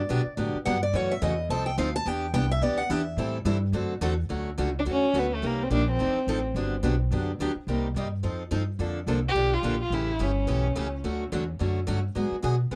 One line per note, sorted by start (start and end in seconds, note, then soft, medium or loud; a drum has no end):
0.00 0.33 D5 medium
0.09 0.25 B2 medium
0.09 0.20 D3 medium
0.09 0.20 F#3 medium
0.09 0.21 B3 loud
0.09 0.21 D4 loud
0.09 0.21 G4 loud
0.25 muted upright bass stroke soft
0.37 0.53 A2 medium
0.37 0.56 D3 medium
0.37 0.57 F#3 medium
0.37 0.57 B3 medium
0.37 0.57 D4 medium
0.37 0.57 G4 medium
0.55 muted upright bass stroke soft
0.65 0.93 G2 medium
0.65 0.76 D3 medium
0.65 0.77 F#3 medium
0.65 0.77 B3 loud
0.65 0.77 D4 loud
0.65 0.77 G4 loud
0.65 0.82 F#5 medium
0.83 0.94 D5 loud
0.93 1.21 F#2 medium
0.93 1.13 C#3 medium
0.93 1.13 E3 medium
0.93 1.13 A3 medium
0.93 1.13 C#4 medium
0.93 1.13 F#4 medium
0.93 1.11 C#5 loud
1.11 1.22 E5 loud
1.22 1.49 E2 loud
1.22 1.32 C#3 medium
1.22 1.33 E3 medium
1.22 1.33 A3 loud
1.22 1.33 C#4 medium
1.22 1.33 F#4 medium
1.22 1.50 D#5 medium
1.49 1.77 C2 medium
1.49 1.69 F3 medium
1.49 1.69 C4 medium
1.49 1.69 D#4 medium
1.49 1.70 A4 medium
1.49 1.66 A5 loud
1.66 1.78 G5 medium
1.78 2.05 D2 loud
1.78 1.88 F3 loud
1.78 1.89 C4 loud
1.78 1.89 D#4 loud
1.78 1.89 A4 loud
1.78 1.94 F5 medium
1.96 2.08 A5 loud
2.06 2.33 E2 medium
2.06 2.25 E3 medium
2.06 2.25 B3 medium
2.06 2.26 D4 medium
2.06 2.26 G4 medium
2.06 2.33 G5 medium
2.33 2.61 C2 loud
2.33 2.45 E3 medium
2.33 2.45 B3 loud
2.33 2.45 D4 loud
2.33 2.45 G4 medium
2.33 2.50 G5 loud
2.51 2.62 E5 loud
2.61 2.89 D2 medium
2.61 2.81 E3 medium
2.61 2.81 B3 medium
2.61 2.81 D4 medium
2.61 2.82 G4 medium
2.61 2.78 D5 loud
2.78 2.91 F#5 medium
2.89 3.16 E2 medium
2.89 3.01 E3 loud
2.89 3.01 B3 loud
2.89 3.01 D4 loud
2.89 3.01 G4 loud
2.89 3.35 E5 loud
3.17 3.44 A2 medium
3.17 3.37 E3 medium
3.17 3.37 G3 medium
3.17 3.37 C4 medium
3.17 3.37 E4 medium
3.17 3.37 A4 medium
3.45 3.72 G2 loud
3.45 3.56 E3 medium
3.45 3.56 G3 loud
3.45 3.57 C4 medium
3.45 3.57 E4 loud
3.45 3.57 A4 loud
3.72 4.01 F#2 medium
3.72 3.93 D3 medium
3.72 3.93 A3 medium
3.72 3.93 C4 medium
3.72 3.93 F#4 medium
3.72 3.93 A4 medium
4.01 4.29 E2 loud
4.01 4.12 D3 loud
4.01 4.13 A3 loud
4.01 4.13 C4 medium
4.01 4.13 F#4 loud
4.01 4.13 A4 loud
4.29 4.57 D2 medium
4.29 4.49 D3 medium
4.29 4.49 F#3 medium
4.29 4.49 A3 medium
4.29 4.49 C#4 medium
4.29 4.49 F#4 medium
4.58 4.85 C#2 medium
4.58 4.69 D3 medium
4.58 4.69 F#3 medium
4.58 4.69 A3 medium
4.58 4.69 C#4 medium
4.58 4.69 F#4 medium
4.79 4.84 D4 medium
4.85 5.13 E2 medium
4.85 5.05 D3 medium
4.85 5.05 F#3 medium
4.85 5.05 A3 medium
4.85 5.05 C#4 medium
4.85 5.06 F#4 medium
4.91 5.20 C#4 loud
5.13 5.41 D2 medium
5.13 5.25 D3 medium
5.13 5.25 F#3 medium
5.13 5.25 A3 medium
5.13 5.25 C#4 medium
5.13 5.25 F#4 loud
5.18 5.36 B3 medium
5.34 5.48 A3 medium
5.42 5.70 C2 medium
5.42 5.61 C3 medium
5.42 5.62 G3 medium
5.42 5.62 A#3 medium
5.42 5.64 A#3 medium
5.42 5.62 D#4 medium
5.42 5.62 G4 medium
5.63 5.72 C4 medium
5.70 5.98 A#1 medium
5.70 5.81 C3 medium
5.70 5.81 G3 medium
5.70 5.82 A#3 medium
5.70 5.87 D4 medium
5.70 5.82 D#4 medium
5.70 5.82 G4 medium
5.91 6.42 C4 medium
5.99 6.14 F1 medium
5.99 6.18 F3 medium
5.99 6.18 C4 medium
5.99 6.18 D#4 medium
5.99 6.19 A4 medium
6.15 muted upright bass stroke soft
6.27 6.54 A1 medium
6.27 6.38 F3 medium
6.27 6.38 C4 medium
6.27 6.38 D#4 loud
6.27 6.39 A4 loud
6.54 6.82 G1 medium
6.54 6.74 D3 medium
6.54 6.74 F#3 medium
6.54 6.75 B3 medium
6.54 6.75 D4 medium
6.54 6.75 G4 medium
6.83 7.10 B1 medium
6.83 6.94 D3 medium
6.83 6.94 F#3 medium
6.83 6.94 B3 medium
6.83 6.94 D4 medium
6.83 6.94 G4 medium
7.11 7.38 F#2 medium
7.11 7.30 D3 medium
7.11 7.31 F#3 medium
7.11 7.31 B3 medium
7.11 7.31 D4 medium
7.11 7.31 G4 medium
7.39 7.54 D2 medium
7.39 7.50 D3 medium
7.39 7.51 F#3 loud
7.39 7.51 B3 medium
7.39 7.51 D4 medium
7.39 7.51 G4 loud
7.55 muted upright bass stroke soft
7.67 7.94 C2 medium
7.67 7.87 C3 medium
7.67 7.87 G3 medium
7.67 7.87 A#3 medium
7.67 7.87 D#4 medium
7.67 7.87 G4 medium
7.94 8.22 G2 medium
7.94 8.06 C3 medium
7.94 8.06 G3 medium
7.94 8.07 A#3 medium
7.94 8.07 D#4 medium
7.94 8.07 G4 medium
8.23 8.51 F2 medium
8.23 8.42 F3 medium
8.23 8.42 C4 medium
8.23 8.43 D#4 medium
8.23 8.43 A4 medium
8.51 8.78 G2 medium
8.51 8.62 F3 medium
8.51 8.62 C4 medium
8.51 8.62 D#4 loud
8.51 8.62 A4 medium
8.79 9.06 F2 medium
8.79 8.98 D3 medium
8.79 8.99 F3 medium
8.79 8.99 A#3 medium
8.79 8.99 D4 medium
8.79 8.99 A4 medium
9.07 9.34 C2 loud
9.07 9.18 D3 medium
9.07 9.18 F3 medium
9.07 9.18 A#3 medium
9.07 9.19 D4 medium
9.07 9.19 A4 medium
9.28 9.55 G4 loud
9.35 9.62 B1 medium
9.35 9.54 D3 medium
9.35 9.54 F3 medium
9.35 9.55 A#3 medium
9.35 9.55 D4 medium
9.35 9.55 A4 medium
9.54 9.81 F4 medium
9.63 9.90 A#1 medium
9.63 9.74 D3 medium
9.63 9.74 F3 medium
9.63 9.75 A#3 loud
9.63 9.75 D4 medium
9.63 9.75 A4 loud
9.83 9.95 F4 medium
9.90 10.18 A1 medium
9.90 10.11 C#3 medium
9.90 10.11 E3 medium
9.90 10.11 A3 medium
9.90 10.11 C#4 medium
9.90 10.24 E4 medium
9.90 10.11 G4 medium
10.19 10.47 G1 loud
10.19 10.30 C#3 medium
10.19 10.30 E3 medium
10.19 10.31 A3 medium
10.19 10.31 C#4 loud
10.19 10.94 C#4 medium
10.19 10.31 G4 medium
10.47 10.75 B1 medium
10.47 10.66 C#3 medium
10.47 10.67 E3 medium
10.47 10.67 A3 medium
10.47 10.67 C#4 medium
10.47 10.67 G4 medium
10.76 11.03 C#2 medium
10.76 10.86 C#3 loud
10.76 10.87 E3 medium
10.76 10.87 A3 medium
10.76 10.87 C#4 medium
10.76 10.87 G4 loud
11.04 11.31 D2 medium
11.04 11.23 D3 medium
11.04 11.23 F#3 medium
11.04 11.23 A3 medium
11.04 11.23 C#4 medium
11.04 11.23 F#4 medium
11.32 11.59 E2 medium
11.32 11.43 D3 medium
11.32 11.43 F#3 medium
11.32 11.43 A3 medium
11.32 11.43 C#4 medium
11.32 11.43 F#4 medium
11.59 11.87 F#2 medium
11.59 11.79 D3 medium
11.59 11.79 F#3 medium
11.59 11.79 A3 medium
11.59 11.79 C#4 medium
11.59 11.80 F#4 medium
11.87 12.15 G2 medium
11.87 11.98 D3 medium
11.87 11.98 F#3 medium
11.87 11.99 A3 medium
11.87 11.99 C#4 medium
11.87 11.99 F#4 loud
12.15 12.31 G#2 medium
12.15 12.35 D3 medium
12.15 12.35 F#3 medium
12.15 12.35 B3 medium
12.15 12.35 F#4 medium
12.15 12.35 G#4 medium
12.31 muted upright bass stroke soft
12.42 12.70 B2 loud
12.42 12.54 D3 medium
12.42 12.54 F#3 medium
12.42 12.55 B3 medium
12.42 12.55 F#4 medium
12.42 12.55 G#4 medium
12.71 12.75 C#3 medium
12.71 12.75 G#3 medium
12.71 12.75 B3 medium
12.71 12.75 F4 medium
12.71 12.75 G#4 medium